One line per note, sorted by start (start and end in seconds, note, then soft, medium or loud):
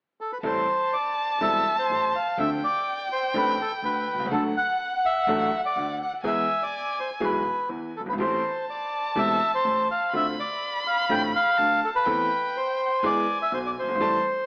0.21 0.31 A4 medium
0.33 0.38 B4 medium
0.43 0.64 A1 medium
0.43 0.64 A2 medium
0.43 0.64 G3 medium
0.43 0.64 C4 soft
0.43 0.64 E4 medium
0.43 0.64 A4 medium
0.43 0.94 C5 medium
0.43 2.40 A5 loud
0.93 1.38 D5 medium
1.41 1.61 E1 medium
1.41 1.61 E2 medium
1.41 1.61 G3 medium
1.41 1.61 C4 medium
1.41 1.62 E4 medium
1.41 1.61 A4 medium
1.41 1.76 E5 medium
1.79 2.15 C5 medium
1.90 2.10 A1 medium
1.90 2.10 A1 soft
1.90 2.10 A2 soft
2.15 2.39 F5 medium
2.37 2.58 D2 medium
2.37 2.58 D3 medium
2.37 2.58 F3 medium
2.37 2.58 C4 soft
2.37 2.59 D4 medium
2.37 2.59 A4 medium
2.37 2.50 E5 medium
2.37 4.30 G5 loud
2.64 3.08 D5 medium
3.12 3.34 C5 medium
3.34 3.55 A1 medium
3.34 3.55 A2 medium
3.34 3.55 F3 medium
3.34 3.55 C4 medium
3.34 3.55 D4 medium
3.34 3.55 A4 medium
3.34 3.59 B4 medium
3.61 3.72 A4 medium
3.82 4.03 D2 medium
3.82 4.04 D2 soft
3.82 4.03 D3 soft
3.82 4.29 B4 medium
4.13 4.18 B1 soft
4.13 4.20 B1 soft
4.18 4.24 C2 soft
4.18 4.25 C2 medium
4.25 4.31 C#2 medium
4.31 4.51 D2 medium
4.31 4.52 D2 medium
4.31 4.52 D3 medium
4.31 4.51 F#3 medium
4.31 4.51 A3 medium
4.31 4.51 D4 medium
4.31 4.52 A4 medium
4.31 4.43 A4 medium
4.31 6.20 F#5 medium
4.57 5.06 F#5 medium
5.05 5.61 E5 medium
5.27 5.48 A1 medium
5.27 5.48 A2 medium
5.27 5.48 F#3 medium
5.27 5.48 A3 medium
5.27 5.48 D4 medium
5.27 5.49 A4 medium
5.66 5.99 D5 medium
5.76 5.96 D2 soft
5.76 5.97 D2 soft
5.76 5.97 D3 soft
6.03 6.13 F#5 medium
6.24 6.44 E2 medium
6.24 6.45 E2 medium
6.24 6.45 E3 medium
6.24 6.45 G#3 medium
6.24 6.45 B3 medium
6.24 6.45 G#4 medium
6.24 6.63 E5 medium
6.24 7.91 G#5 medium
6.63 6.99 D5 medium
7.00 7.10 C5 medium
7.20 7.41 B1 medium
7.20 7.42 B1 medium
7.20 7.42 B2 medium
7.20 7.41 E3 medium
7.20 7.41 G#3 medium
7.20 7.42 B3 medium
7.20 7.42 G#4 medium
7.25 7.69 B4 medium
7.69 7.90 E2 soft
7.69 7.90 E3 soft
7.97 8.05 F#1 soft
7.97 8.07 F#1 soft
7.97 8.02 A4 medium
8.06 8.12 G1 soft
8.06 8.13 G1 medium
8.06 8.14 B4 medium
8.13 8.17 G#1 medium
8.13 8.19 G#1 medium
8.18 8.39 A1 medium
8.18 8.40 A1 medium
8.18 8.40 A2 medium
8.18 8.40 E3 medium
8.18 8.40 A3 soft
8.18 8.40 C4 soft
8.18 8.40 G4 medium
8.18 8.65 C5 medium
8.18 10.09 A5 medium
8.70 9.19 D5 medium
9.15 9.37 E1 medium
9.15 9.37 E2 medium
9.15 9.37 E3 medium
9.15 9.37 A3 medium
9.15 9.37 C4 medium
9.15 9.37 G4 medium
9.15 9.52 E5 medium
9.55 9.88 C5 medium
9.64 9.86 A1 soft
9.64 9.85 A2 soft
9.91 10.13 F5 medium
10.13 10.34 D2 medium
10.13 10.34 D3 medium
10.13 10.34 A3 soft
10.13 10.34 C4 medium
10.13 10.34 F4 medium
10.13 10.26 E5 medium
10.13 11.59 B5 loud
10.39 10.84 D5 medium
10.87 11.09 F5 medium
11.09 11.30 A1 medium
11.09 11.30 A2 medium
11.09 11.30 D3 medium
11.09 11.30 A3 medium
11.09 11.30 C4 medium
11.09 11.30 F4 medium
11.09 11.22 G5 medium
11.36 11.80 F5 medium
11.58 11.79 D2 medium
11.58 11.79 D2 soft
11.58 11.79 D3 soft
11.58 12.07 A5 medium
11.84 11.89 A4 medium
11.95 12.57 B4 medium
12.06 12.27 E2 medium
12.06 12.27 E3 medium
12.06 12.27 A3 medium
12.06 12.27 C4 medium
12.06 12.27 A4 medium
12.06 13.02 G5 medium
12.57 13.06 C5 medium
13.02 13.24 E2 medium
13.02 13.24 E3 medium
13.02 13.24 G#3 medium
13.02 13.24 B3 medium
13.02 13.24 G#4 medium
13.02 13.38 D5 medium
13.02 13.96 G#5 medium
13.42 13.52 E5 medium
13.52 13.72 B1 soft
13.52 13.72 B1 medium
13.52 13.72 B2 soft
13.52 13.59 C5 medium
13.66 13.71 D5 medium
13.79 13.88 F#1 soft
13.79 14.46 C5 medium
13.88 13.94 G1 medium
13.88 13.94 G1 soft
13.95 14.00 G#1 medium
13.95 14.01 G#1 medium
14.00 14.19 A1 medium
14.00 14.16 E3 medium
14.00 14.16 G3 medium
14.00 14.16 A3 medium
14.00 14.16 A5 medium